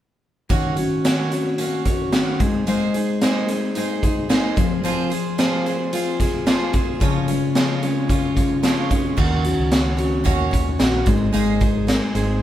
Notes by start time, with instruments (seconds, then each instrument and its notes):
0.49 steel-string acoustic guitar D#3 A#3 C#4 F#4 C#5, kick, closed hi-hat
0.76 steel-string acoustic guitar C#4 F#4 C#5, closed hi-hat
1.04 steel-string acoustic guitar D#3 A#3 C#4 F#4 C#5, snare, closed hi-hat
1.31 steel-string acoustic guitar C#4 F#4 C#5, closed hi-hat
1.58 steel-string acoustic guitar A#3 C#4 F#4 C#5, closed hi-hat
1.85 steel-string acoustic guitar C#4 F#4 C#5, kick, closed hi-hat
2.12 steel-string acoustic guitar D#3 A#3 C#4 F#4 C#5, snare, closed hi-hat
2.40 clean electric guitar G#3, steel-string acoustic guitar D#4 G#4 C5, kick, closed hi-hat
2.67 steel-string acoustic guitar G#3 A#3 D#4 G#4 C5, closed hi-hat
2.94 steel-string acoustic guitar D#4 G#4 C5, closed hi-hat
3.21 steel-string acoustic guitar G#3 A#3 D#4 G#4 C5, snare, closed hi-hat
3.48 steel-string acoustic guitar D#4 G#4 C5, closed hi-hat
3.75 steel-string acoustic guitar A#3 D#4 G#4 C5, closed hi-hat
4.03 steel-string acoustic guitar D#4 G#4 C5, kick, closed hi-hat
4.29 steel-string acoustic guitar G#3 A#3 D#4 G#4 C5, snare, closed hi-hat
4.56 clean electric guitar F3, steel-string acoustic guitar F4 G#4 C5, kick, closed hi-hat
4.84 steel-string acoustic guitar F3 C4 F4 G#4 C5, closed hi-hat
5.10 steel-string acoustic guitar F4 G#4 C5, closed hi-hat
5.38 steel-string acoustic guitar F3 C4 F4 G#4 C5, snare, closed hi-hat
5.66 steel-string acoustic guitar F4 G#4 C5, closed hi-hat
5.93 steel-string acoustic guitar C4 F4 G#4 C5, closed hi-hat
6.20 steel-string acoustic guitar F4 G#4 C5, kick, snare, closed hi-hat
6.46 steel-string acoustic guitar F3 C4 F4 G#4 C5, snare, closed hi-hat
6.73 steel-string acoustic guitar F4 G#4 C5, kick, closed hi-hat
7.00 steel-string acoustic guitar C#3 F3 G#3 C#4 F4 C#5, kick, closed hi-hat
7.28 steel-string acoustic guitar G#3 C#4 F4 C#5, closed hi-hat
7.55 steel-string acoustic guitar C#3 F3 G#3 C#4 F4 C#5, snare, closed hi-hat
7.83 steel-string acoustic guitar G#3 C#4 F4 C#5, closed hi-hat
8.09 steel-string acoustic guitar G#3 C#4 F4 C#5, kick, closed hi-hat
8.36 steel-string acoustic guitar G#3 C#4 F4 C#5, kick, closed hi-hat
8.63 steel-string acoustic guitar C#3 F3 G#3 C#4 F4 C#5, snare, closed hi-hat
8.90 steel-string acoustic guitar G#3 C#4 F4 C#5, clean electric guitar D#4, kick, closed hi-hat
9.04 clean electric guitar F4
9.17 fingered electric bass D#2, steel-string acoustic guitar D#3 A#3 C#4 F#4 C#5, kick, crash
9.44 steel-string acoustic guitar C#4 F#4 C#5, closed hi-hat
9.59 fingered electric bass C#2
9.71 steel-string acoustic guitar A#3 C#4 F#4 C#5, snare, closed hi-hat
9.97 steel-string acoustic guitar C#4 F#4 C#5, closed hi-hat
10.24 fingered electric bass D#2, steel-string acoustic guitar D#3 A#3 C#4 F#4 C#5, kick, closed hi-hat
10.51 fingered electric bass D#2, steel-string acoustic guitar C#4 F#4 C#5, kick, closed hi-hat
10.79 fingered electric bass A#1, steel-string acoustic guitar A#3 C#4 F#4 C#5, snare, closed hi-hat
11.06 fingered electric bass G#1, clean electric guitar G#3, steel-string acoustic guitar D#4 G#4 C5, kick, closed hi-hat
11.33 fingered electric bass G#1, steel-string acoustic guitar G#3 A#3 D#4 G#4 C5, closed hi-hat
11.61 steel-string acoustic guitar D#4 G#4 C5, kick, closed hi-hat
11.87 steel-string acoustic guitar A#3 D#4 G#4 C5, clean electric guitar A#4, snare, closed hi-hat
12.02 clean electric guitar C5
12.15 fingered electric bass G#1, steel-string acoustic guitar D#4 G#4 C5, closed hi-hat